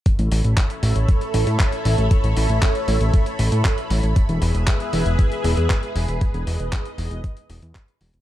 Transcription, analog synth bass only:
\new Staff \with { instrumentName = "Analog synth bass" } { \clef bass \time 4/4 \key a \lydian \tempo 4 = 117 r16 a,,16 a,,16 a,,16 r8 a,,16 a,,16 r8 a,,16 a,16 r8 a,,16 a,,16 | r16 a,,16 a,,16 a,,16 r8 a,,16 a,,16 r8 a,,16 a,16 r8 a,,16 a,,16 | r16 e,,16 e,,16 e,,16 r8 e,,16 e,,16 r8 e,,16 e,16 r8 e,,16 e,,16 | r16 e,,16 e,,16 e,,16 r8 e,,16 e,,16 r8 e,,16 e,16 r8 e,,16 e,,16 | }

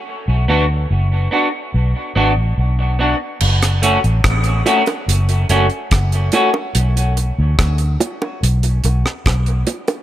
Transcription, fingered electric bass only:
\new Staff \with { instrumentName = "Fingered electric bass" } { \clef bass \time 4/4 \key fis \minor \tempo 4 = 72 r16 b,,16 d,8 fis,,8 r8 b,,16 r16 gis,,16 a,,16 b,,8. r16 | fis,,8. a,,16 a,,8 r8 fis,,8 fis,,16 r16 fis,,8 r8 | b,,8. d,16 d,8 r8 b,,8 b,,16 r16 b,,8 r8 | }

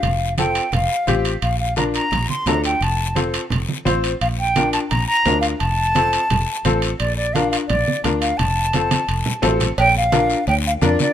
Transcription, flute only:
\new Staff \with { instrumentName = "Flute" } { \time 4/4 \key bes \major \tempo 4 = 172 f''4 g''4 f''4. r8 | f''8 f''8 bes''8 bes''4 c'''8 bes''8 g''8 | a''4 r2. | f''8 g''4 a''8 bes''8 bes''4 f''8 |
a''2.~ a''8 r8 | d''8 d''8 f''8 f''8 d''4 r8 f''8 | a''2. r4 | g''8 f''4. g''8 f''8 d''8 d''8 | }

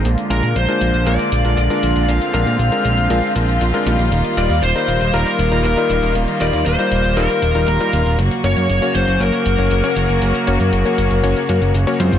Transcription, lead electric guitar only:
\new Staff \with { instrumentName = "Lead electric guitar" } { \time 4/4 \key ees \major \tempo 4 = 118 r8 bes'8 c''4 d''4 d''4 | f''8 f''2 r4. | r8 d''8 c''4 bes'4 bes'4 | r8 d''8 c''4 bes'4 bes'4 |
r8 des''4 c''8 bes'2~ | bes'2. r4 | }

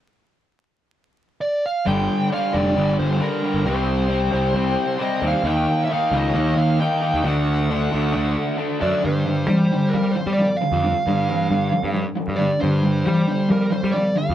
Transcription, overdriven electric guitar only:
\new Staff \with { instrumentName = "Overdriven electric guitar" } { \clef bass \time 4/4 \key g \minor \tempo 4 = 134 r1 | <g, d g>4 <g, d g>8 <g, d g>8 <g, d g>4 <g, d g>8 <g, d g>8 | <c g c'>4 <c g c'>8 <c g c'>8 <c g c'>4 <c g c'>8 <c g c'>8 | <ees bes ees'>4 <ees bes ees'>8 <ees bes ees'>8 <ees bes ees'>4 <ees bes ees'>8 <ees bes ees'>8 |
<d a d'>4 <d a d'>8 <d a d'>8 <d a d'>4 <d a d'>8 <d a d'>8 | <g, d>8 <g, d>8 <g, e>8 <g, d>8 <g, f>8 <g, f>8 <g, f>8 <g, d>8 | <g, d>8 <g, d>8 <g, e>8 <g, d>8 <g, f>8 <g, f>8 <g, f>8 <g, d>8 | <g, d>8 <g, d>8 <g, e>8 <g, d>8 <g, f>8 <g, f>8 <g, f>8 <g, d>8 | }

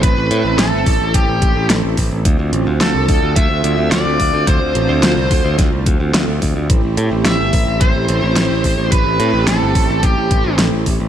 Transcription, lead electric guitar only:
\new Staff \with { instrumentName = "Lead electric guitar" } { \time 4/4 \key a \minor \tempo 4 = 108 b'4 a'4 g'4 r4 | r4 a'4 e''4 d''4 | c''2 r2 | r4 e''4 c''2 |
b'4 a'4 g'4 r4 | }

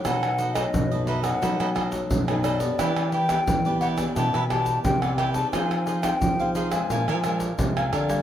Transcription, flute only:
\new Staff \with { instrumentName = "Flute" } { \time 4/4 \key e \minor \tempo 4 = 88 fis''8. dis''8. e''16 fis''4 r8. d''8~ | d''8 g''4 fis''8 a''8 a''8 g''16 fis''16 g''16 a''16 | aes''8. g''8. f''16 aes''4 r8. d''8 | }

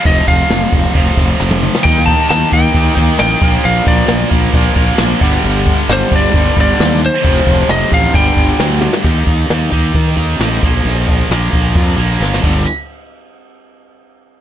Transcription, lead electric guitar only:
\new Staff \with { instrumentName = "Lead electric guitar" } { \time 4/4 \key ees \lydian \tempo 4 = 133 ees''8 f''2. r8 | g''8 a''8 a''8 g''4. g''4 | f''8 d''4 r2 r8 | r4 c''8 d''4 d''4 c''8~ |
c''4 ees''8 f''8 g''4. r8 | r1 | r1 | r1 | }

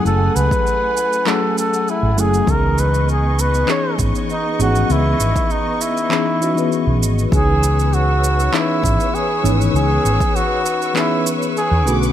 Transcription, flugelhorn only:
\new Staff \with { instrumentName = "Flugelhorn" } { \time 4/4 \key cis \minor \tempo 4 = 99 a'8 b'4. a'8 a'8 e'8 gis'8 | ais'8 b'8 gis'8 b'8 cis''8 r8 dis'8 fis'8 | e'4 dis'8 e'2 r8 | gis'4 fis'4 e'4 gis'8. r16 |
gis'4 fis'4 e'8 r8 gis'8. r16 | }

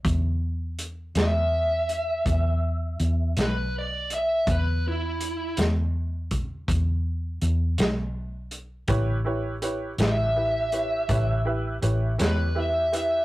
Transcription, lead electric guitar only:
\new Staff \with { instrumentName = "Lead electric guitar" } { \time 12/8 \key a \major \tempo 4. = 54 r4. e''2. b'8 d''8 e''8 | b'8 e'4 r1 r8 | r4. e''2. b'8 e''8 e''8 | }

